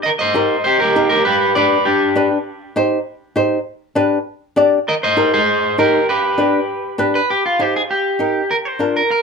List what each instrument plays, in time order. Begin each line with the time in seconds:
0.03 clean electric guitar A#4 D#5
0.19 clean electric guitar C5 D#5
0.34 nylon-string guitar D#4 G4 A#4
0.64 clean electric guitar G4 C5
0.80 clean electric guitar G4 A#4
0.96 nylon-string guitar D#4 G4 A#4
1.09 clean electric guitar G4 A#4
1.25 clean electric guitar G4 B4
1.55 nylon-string guitar D4 G4 B4, clean electric guitar B4 D5
1.85 clean electric guitar D4 G4
2.15 nylon-string guitar D4 G4 B4
2.76 nylon-string guitar D#4 G4 C5
3.36 nylon-string guitar D#4 G4 C5
3.95 nylon-string guitar D4 G4 B4
4.56 nylon-string guitar D4 G4 D5
4.88 clean electric guitar A#4 D#5
5.03 clean electric guitar C5 D#5
5.17 nylon-string guitar D#4 G4 A#4
5.34 clean electric guitar G#4 C5
5.78 nylon-string guitar D#4 G4 A#4, clean electric guitar G4 A#4
6.09 clean electric guitar G4 B4
6.38 nylon-string guitar D4 G4 B4
6.98 nylon-string guitar D4 G4 B4
7.15 clean electric guitar B4
7.30 clean electric guitar G4
7.46 clean electric guitar F4
7.59 nylon-string guitar D#4 G4 C5, clean electric guitar G4
7.76 clean electric guitar G#4
7.91 clean electric guitar G4
8.19 nylon-string guitar D#4 G4 A#4
8.51 clean electric guitar A#4
8.65 clean electric guitar C5
8.79 nylon-string guitar D4 F4 A#4
8.97 clean electric guitar A#4
9.11 clean electric guitar A#4